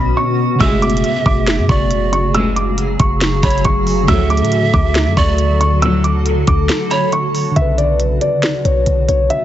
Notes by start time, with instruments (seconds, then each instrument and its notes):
Already playing: 808-style bass B1, ambient pad B2 B3 C#4 F#4, synth keys D3 C#4 B4, grand piano B5
0.17 grand piano C#6
0.55 synth keys C#3 A3
0.60 808-style bass F#1, string section C#2 A2 G#3, ambient pad C#3 F#3 G#4, synth keys F#4, pan flute E5, grand piano E6, kick, closed hi-hat
0.65 synth keys G#4
0.82 grand piano D6, closed hi-hat
0.90 closed hi-hat
0.97 closed hi-hat
1.04 closed hi-hat
1.26 808-style bass F#1, grand piano D6, kick
1.47 snare, closed hi-hat
1.58 808-style bass F#2
1.69 808-style bass F#1, pan flute D5, grand piano C#6, kick
1.91 closed hi-hat
2.13 grand piano C#6, closed hi-hat
2.34 string section C#2 A2 G#3, grand piano E6, closed hi-hat
2.56 grand piano D6, closed hi-hat
2.78 closed hi-hat
3.00 808-style bass F#1, grand piano C#6, kick, closed hi-hat
3.21 snare, closed hi-hat
3.43 808-style bass F#1, pan flute C#5, grand piano B5, kick, closed hi-hat
3.50 closed hi-hat
3.58 closed hi-hat
3.65 808-style bass F#1, grand piano C#6, kick, closed hi-hat
3.87 open hi-hat
4.03 synth keys D3 A3
4.08 string section D2 A2 F#3, 808-style bass D2, ambient pad D3 F#4 A4, synth keys F#4, pan flute E5, grand piano E6, kick, closed hi-hat
4.13 synth keys A4
4.30 grand piano D6, closed hi-hat
4.37 808-style bass A2, closed hi-hat
4.45 closed hi-hat
4.52 closed hi-hat
4.74 808-style bass D2, grand piano D6, kick
4.95 snare, closed hi-hat
5.06 808-style bass F#2
5.17 808-style bass D2, pan flute D5, grand piano C#6, kick
5.38 closed hi-hat
5.61 grand piano C#6, closed hi-hat
5.82 string section D2 A2 F#3, grand piano E6, closed hi-hat
6.04 grand piano D6, closed hi-hat
6.26 closed hi-hat
6.47 808-style bass D2, grand piano D6, kick, closed hi-hat
6.69 snare, closed hi-hat
6.91 pan flute C#5, grand piano B5, closed hi-hat
7.12 grand piano C#6, closed hi-hat
7.35 open hi-hat
7.51 synth keys D3
7.56 808-style bass B1, ambient pad B2 B3 F#4, synth keys C#3, grand piano E5, closed hi-hat
7.61 synth keys B4
7.78 grand piano D5, closed hi-hat
8.00 closed hi-hat
8.21 grand piano D5, closed hi-hat
8.43 snare, closed hi-hat
8.65 808-style bass B1, grand piano C#5, closed hi-hat
8.86 808-style bass B1, closed hi-hat
9.08 808-style bass B1, grand piano C#5, closed hi-hat
9.30 grand piano E5, closed hi-hat